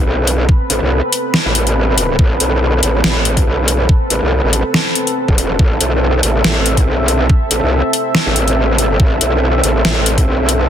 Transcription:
0.00 10.69 C4 medium
0.00 10.69 A4 medium
0.00 5.58 B4 medium
0.06 0.47 B1 medium
0.27 closed hi-hat medium
0.49 kick loud
0.70 0.80 A1 loud
0.70 closed hi-hat medium
0.82 1.01 C2 medium
1.13 closed hi-hat medium
1.34 snare loud
1.45 2.17 A1 loud
1.55 closed hi-hat medium
1.67 closed hi-hat soft
1.98 closed hi-hat medium
2.19 2.39 A1 loud
2.19 kick loud
2.40 2.81 B1 medium
2.40 closed hi-hat medium
2.83 3.02 A1 loud
2.83 closed hi-hat medium
3.04 3.45 A1 medium
3.04 snare loud
3.25 closed hi-hat medium
3.37 kick medium
3.37 closed hi-hat soft
3.47 3.88 B1 medium
3.68 closed hi-hat medium
3.89 kick loud
4.10 4.20 A1 loud
4.10 closed hi-hat medium
4.22 4.41 C2 medium
4.43 4.63 A1 medium
4.53 closed hi-hat medium
4.74 snare loud
4.95 closed hi-hat medium
5.07 closed hi-hat soft
5.28 5.58 E1 loud
5.28 kick medium
5.38 closed hi-hat medium
5.59 5.79 A1 loud
5.59 10.69 E5 medium
5.59 kick loud
5.81 6.22 B1 loud
5.81 closed hi-hat medium
6.23 6.43 A1 medium
6.23 closed hi-hat medium
6.44 6.85 A1 loud
6.44 snare loud
6.66 closed hi-hat medium
6.77 kick medium
6.77 closed hi-hat soft
6.87 7.28 B1 loud
7.08 closed hi-hat medium
7.30 kick loud
7.51 7.61 A1 loud
7.51 closed hi-hat medium
7.62 7.82 C2 loud
7.93 closed hi-hat medium
8.15 snare loud
8.26 8.77 A1 medium
8.36 closed hi-hat medium
8.48 closed hi-hat soft
8.77 8.98 G#1 medium
8.77 closed hi-hat medium
9.00 9.19 A1 loud
9.00 kick loud
9.21 9.62 B1 loud
9.21 closed hi-hat medium
9.64 9.83 A1 loud
9.64 closed hi-hat medium
9.85 10.26 A1 loud
9.85 snare loud
10.06 closed hi-hat medium
10.18 kick medium
10.18 closed hi-hat soft
10.27 10.68 B1 medium
10.49 closed hi-hat medium

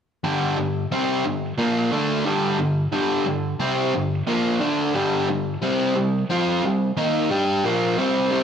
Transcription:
0.24 0.56 G2 medium
0.24 0.56 D3 loud
0.24 0.57 G3 loud
0.57 0.85 G2 medium
0.57 0.85 D3 medium
0.92 1.25 C3 medium
0.92 1.25 G3 medium
0.92 1.25 C4 loud
1.24 1.52 G2 medium
1.24 1.52 D3 medium
1.59 1.92 A#2 medium
1.59 1.92 F3 loud
1.59 1.92 A#3 loud
1.92 2.25 D3 medium
1.92 2.26 A3 medium
1.92 2.26 D4 loud
2.25 2.58 G2 medium
2.25 2.58 D3 loud
2.25 2.59 G3 loud
2.59 2.87 G2 medium
2.59 2.87 D3 medium
2.92 3.25 G2 loud
2.92 3.26 D3 loud
2.92 3.26 G3 loud
3.26 3.54 G2 medium
3.26 3.54 D3 medium
3.60 3.93 C3 loud
3.60 3.93 G3 loud
3.60 3.94 C4 medium
3.94 4.21 G2 medium
3.94 4.22 D3 medium
4.27 4.60 A#2 loud
4.27 4.61 F3 loud
4.27 4.61 A#3 loud
4.60 4.93 D3 medium
4.60 4.94 A3 loud
4.60 4.94 D4 loud
4.94 5.28 G2 medium
4.94 5.28 D3 loud
4.94 5.28 G3 loud
5.29 5.56 G2 medium
5.29 5.56 D3 medium
5.62 5.94 C3 loud
5.62 5.95 G3 loud
5.62 5.95 C4 loud
5.96 6.23 C3 medium
5.96 6.23 G3 medium
6.30 6.63 F3 medium
6.30 6.63 C4 loud
6.30 6.63 F4 loud
6.64 6.91 C3 medium
6.64 6.91 G3 medium
6.97 7.30 D#3 loud
6.97 7.30 A#3 medium
6.97 7.30 D#4 loud
7.31 7.63 G3 medium
7.31 7.64 D4 medium
7.31 7.64 G4 loud
7.64 7.97 A#2 medium
7.64 7.97 F3 medium
7.64 7.97 A#3 loud
7.98 8.30 C3 medium
7.98 8.31 G3 loud
7.98 8.31 C4 loud
8.31 8.43 C3 medium
8.31 8.43 G3 loud
8.31 8.43 C4 medium

